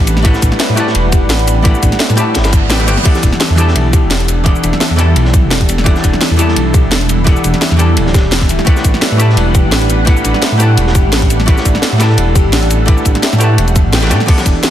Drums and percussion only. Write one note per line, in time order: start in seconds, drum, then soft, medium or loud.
0.07 closed hi-hat medium
0.07 ride medium
0.07 cabasa medium
0.17 snare soft
0.25 kick loud
0.25 closed hi-hat loud
0.25 ride medium
0.34 snare soft
0.34 cabasa soft
0.42 kick medium
0.42 closed hi-hat medium
0.42 ride medium
0.42 cabasa medium
0.52 snare soft
0.60 snare loud
0.60 closed hi-hat loud
0.60 ride medium
0.69 ride soft
0.77 closed hi-hat medium
0.77 ride medium
0.77 cabasa medium
0.87 snare soft
0.95 closed hi-hat medium
0.95 ride medium
1.12 kick loud
1.12 closed hi-hat medium
1.12 ride medium
1.12 cabasa medium
1.30 snare loud
1.30 closed hi-hat medium
1.30 ride medium
1.39 closed hi-hat soft
1.47 closed hi-hat medium
1.47 ride medium
1.47 cabasa medium
1.65 kick loud
1.65 closed hi-hat loud
1.65 ride medium
1.75 cabasa soft
1.83 kick medium
1.83 closed hi-hat medium
1.83 ride medium
1.83 cabasa medium
1.92 snare soft
1.92 closed hi-hat soft
1.99 snare loud
1.99 closed hi-hat medium
1.99 ride medium
2.10 snare medium
2.10 ride soft
2.10 cabasa soft
2.17 closed hi-hat medium
2.17 ride medium
2.17 cabasa medium
2.34 snare loud
2.34 closed hi-hat loud
2.34 ride medium
2.44 snare loud
2.44 closed hi-hat soft
2.44 ride medium
2.44 cabasa soft
2.53 kick loud
2.53 closed hi-hat medium
2.53 ride medium
2.53 cabasa medium
2.70 snare loud
2.70 closed hi-hat medium
2.70 ride medium
2.79 snare soft
2.79 closed hi-hat soft
2.79 ride soft
2.88 closed hi-hat medium
2.88 ride medium
2.88 cabasa medium
2.97 snare soft
3.05 kick loud
3.05 closed hi-hat loud
3.05 crash medium
3.05 ride medium
3.15 snare soft
3.15 cabasa soft
3.23 kick medium
3.23 closed hi-hat medium
3.23 ride medium
3.23 cabasa medium
3.33 snare soft
3.40 snare loud
3.40 closed hi-hat loud
3.40 ride medium
3.50 ride soft
3.57 closed hi-hat medium
3.57 ride medium
3.57 cabasa medium
3.68 snare soft
3.75 closed hi-hat loud
3.75 ride medium
3.93 kick loud
3.93 closed hi-hat medium
3.93 ride medium
3.93 cabasa medium
4.11 snare loud
4.11 closed hi-hat loud
4.11 ride medium
4.20 closed hi-hat soft
4.28 closed hi-hat medium
4.28 ride medium
4.28 cabasa medium
4.46 kick loud
4.46 closed hi-hat loud
4.46 ride medium
4.55 cabasa soft
4.64 closed hi-hat medium
4.64 ride medium
4.64 cabasa medium
4.73 snare soft
4.80 snare loud
4.80 closed hi-hat medium
4.80 ride medium
4.90 ride soft
4.99 closed hi-hat medium
4.99 ride medium
4.99 cabasa medium
5.16 closed hi-hat medium
5.16 ride medium
5.25 snare soft
5.34 kick loud
5.34 closed hi-hat medium
5.34 ride medium
5.34 cabasa medium
5.51 snare loud
5.51 closed hi-hat medium
5.51 ride medium
5.61 kick medium
5.61 closed hi-hat soft
5.69 closed hi-hat medium
5.69 ride medium
5.69 cabasa medium
5.78 snare medium
5.86 kick loud
5.86 closed hi-hat medium
5.86 ride medium
5.96 snare medium
5.96 cabasa soft
6.04 kick medium
6.04 closed hi-hat medium
6.04 ride medium
6.04 cabasa medium
6.13 snare soft
6.21 snare loud
6.21 closed hi-hat medium
6.21 ride medium
6.30 ride soft
6.39 closed hi-hat medium
6.39 ride medium
6.39 cabasa medium
6.48 snare soft
6.56 closed hi-hat medium
6.56 ride medium
6.74 kick loud
6.74 closed hi-hat medium
6.74 ride medium
6.74 cabasa medium
6.92 snare loud
6.92 closed hi-hat medium
6.92 ride loud
7.01 closed hi-hat soft
7.09 closed hi-hat medium
7.09 ride medium
7.09 cabasa medium
7.27 kick loud
7.27 closed hi-hat medium
7.27 ride medium
7.36 cabasa soft
7.44 closed hi-hat medium
7.44 ride medium
7.44 cabasa medium
7.54 snare soft
7.54 closed hi-hat soft
7.61 snare loud
7.61 closed hi-hat medium
7.61 ride medium
7.71 snare medium
7.71 ride soft
7.79 closed hi-hat medium
7.79 ride medium
7.79 cabasa medium
7.97 closed hi-hat medium
7.97 ride medium
8.06 snare soft
8.14 kick loud
8.14 snare loud
8.14 closed hi-hat medium
8.14 ride medium
8.14 cabasa medium
8.32 snare loud
8.32 closed hi-hat medium
8.32 ride medium
8.41 kick medium
8.41 snare soft
8.41 closed hi-hat soft
8.49 closed hi-hat medium
8.49 ride medium
8.49 cabasa medium
8.59 snare soft
8.67 kick loud
8.67 closed hi-hat medium
8.67 ride medium
8.76 snare soft
8.76 cabasa soft
8.84 kick medium
8.84 closed hi-hat medium
8.84 ride medium
8.84 cabasa medium
8.94 snare soft
9.01 snare loud
9.01 closed hi-hat medium
9.01 ride medium
9.12 ride soft
9.19 closed hi-hat medium
9.19 ride medium
9.19 cabasa medium
9.29 snare soft
9.37 closed hi-hat medium
9.37 ride medium
9.55 kick loud
9.55 closed hi-hat medium
9.55 ride medium
9.55 cabasa medium
9.72 snare loud
9.72 closed hi-hat medium
9.72 ride medium
9.82 closed hi-hat soft
9.90 closed hi-hat medium
9.90 ride medium
9.90 cabasa medium
10.07 kick loud
10.07 closed hi-hat medium
10.07 ride medium
10.17 cabasa soft
10.24 closed hi-hat medium
10.24 ride medium
10.24 cabasa medium
10.34 snare soft
10.42 snare loud
10.42 closed hi-hat medium
10.42 ride medium
10.52 ride soft
10.60 closed hi-hat medium
10.60 ride medium
10.60 cabasa medium
10.77 closed hi-hat medium
10.77 ride medium
10.87 snare soft
10.95 kick loud
10.95 closed hi-hat medium
10.95 ride medium
10.95 cabasa medium
11.13 snare loud
11.13 closed hi-hat medium
11.13 ride medium
11.22 kick medium
11.22 closed hi-hat soft
11.30 closed hi-hat medium
11.30 ride medium
11.30 cabasa medium
11.40 snare soft
11.48 kick loud
11.48 closed hi-hat loud
11.48 ride medium
11.57 snare medium
11.57 cabasa soft
11.65 kick medium
11.65 closed hi-hat medium
11.65 ride medium
11.65 cabasa medium
11.75 snare soft
11.82 snare loud
11.82 closed hi-hat loud
11.82 ride medium
11.92 ride soft
11.99 snare loud
11.99 closed hi-hat medium
11.99 ride medium
11.99 cabasa medium
12.10 snare soft
12.18 closed hi-hat medium
12.18 ride medium
12.36 kick loud
12.36 closed hi-hat medium
12.36 ride medium
12.36 cabasa medium
12.53 snare loud
12.53 closed hi-hat medium
12.53 ride medium
12.63 closed hi-hat soft
12.70 closed hi-hat medium
12.70 ride medium
12.70 cabasa medium
12.88 kick loud
12.88 closed hi-hat loud
12.88 ride medium
12.98 cabasa soft
13.05 kick medium
13.05 closed hi-hat medium
13.05 ride medium
13.05 cabasa medium
13.15 snare soft
13.15 closed hi-hat soft
13.23 snare loud
13.23 closed hi-hat loud
13.23 ride medium
13.33 snare medium
13.33 ride soft
13.33 cabasa soft
13.40 closed hi-hat medium
13.40 ride medium
13.40 cabasa medium
13.58 closed hi-hat medium
13.58 ride medium
13.68 closed hi-hat soft
13.68 cabasa soft
13.76 kick loud
13.76 closed hi-hat medium
13.76 ride medium
13.76 cabasa medium
13.93 snare medium
13.93 snare loud
13.93 closed hi-hat medium
13.93 ride medium
13.98 snare medium
13.98 ride medium
14.02 snare medium
14.02 snare soft
14.02 closed hi-hat soft
14.02 ride medium
14.07 snare medium
14.07 ride medium
14.11 closed hi-hat medium
14.11 ride medium
14.11 cabasa medium
14.20 snare medium
14.28 kick loud
14.28 closed hi-hat loud
14.28 crash loud
14.28 ride medium
14.38 snare medium
14.38 snare soft
14.38 cabasa soft
14.45 kick medium
14.45 closed hi-hat medium
14.45 ride medium
14.45 cabasa medium
14.63 snare loud
14.63 closed hi-hat loud
14.63 ride medium